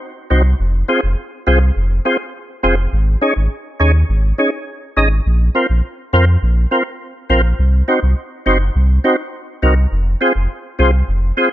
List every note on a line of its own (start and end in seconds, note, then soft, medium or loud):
0.30 0.54 C2 medium
0.30 0.42 C4 medium
0.30 0.42 D#4 medium
0.30 0.42 F#4 medium
0.30 0.43 C5 medium
0.60 0.83 F1 loud
0.88 1.00 C4 medium
0.88 1.00 F4 medium
0.88 1.01 G#4 medium
0.88 1.01 C5 loud
1.03 1.15 F1 loud
1.47 1.71 C2 medium
1.47 1.59 C4 medium
1.47 1.59 F4 medium
1.47 1.59 G#4 medium
1.47 1.59 C5 loud
1.76 2.00 F1 loud
2.05 2.17 C4 medium
2.05 2.17 F4 medium
2.05 2.17 G#4 medium
2.05 2.17 C5 loud
2.63 2.87 F1 medium
2.63 2.75 C4 medium
2.63 2.75 F4 medium
2.63 2.75 G#4 medium
2.63 2.76 C5 medium
2.93 3.16 G#1 loud
3.21 3.33 C#4 medium
3.21 3.34 D#4 medium
3.21 3.34 G#4 medium
3.21 3.34 C#5 loud
3.36 3.48 G#1 medium
3.80 4.04 D#2 medium
3.80 3.92 C#4 medium
3.80 3.92 D#4 medium
3.80 3.92 G#4 medium
3.80 3.92 C#5 loud
4.09 4.33 G#1 loud
4.38 4.50 C#4 medium
4.38 4.50 D#4 medium
4.38 4.50 G#4 medium
4.38 4.50 C#5 medium
4.97 5.20 G#1 medium
4.97 5.08 C#4 medium
4.97 5.08 D#4 medium
4.97 5.09 G#4 medium
4.97 5.09 D#5 medium
5.26 5.49 A#1 loud
5.55 5.66 C4 medium
5.55 5.67 F4 medium
5.55 5.67 A#4 medium
5.55 5.67 C5 loud
5.70 5.81 A#1 medium
6.13 6.37 F2 medium
6.13 6.25 C4 medium
6.13 6.25 F4 medium
6.13 6.25 A#4 medium
6.13 6.25 C5 loud
6.42 6.66 A#1 loud
6.71 6.83 C4 medium
6.71 6.83 F4 medium
6.71 6.83 A#4 medium
6.71 6.84 C5 loud
7.30 7.53 A#1 medium
7.30 7.41 C4 medium
7.30 7.41 F4 medium
7.30 7.42 A#4 medium
7.30 7.42 C5 loud
7.59 7.82 C2 loud
7.88 8.00 C4 medium
7.88 8.00 D#4 medium
7.88 8.00 F#4 medium
7.88 8.00 C5 loud
8.03 8.14 C2 medium
8.46 8.70 F#1 medium
8.46 8.58 C4 medium
8.46 8.58 D#4 medium
8.46 8.58 F#4 medium
8.46 8.58 C5 loud
8.75 8.99 C2 loud
9.04 9.16 C4 medium
9.04 9.16 D#4 medium
9.04 9.16 F#4 medium
9.04 9.16 C5 loud
9.62 9.86 C2 medium
9.62 9.74 C4 medium
9.62 9.74 D#4 medium
9.62 9.74 F#4 medium
9.62 9.75 A#4 medium
9.92 10.15 F1 loud
10.21 10.32 C4 medium
10.21 10.33 F4 medium
10.21 10.33 G#4 medium
10.21 10.33 C5 loud
10.35 10.47 F1 loud
10.79 11.03 C2 medium
10.79 10.91 C4 medium
10.79 10.91 F4 medium
10.79 10.91 G#4 medium
10.79 10.91 C5 loud
11.08 11.32 F1 loud
11.37 11.49 C4 medium
11.37 11.49 F4 medium
11.37 11.49 G#4 medium
11.37 11.49 C5 loud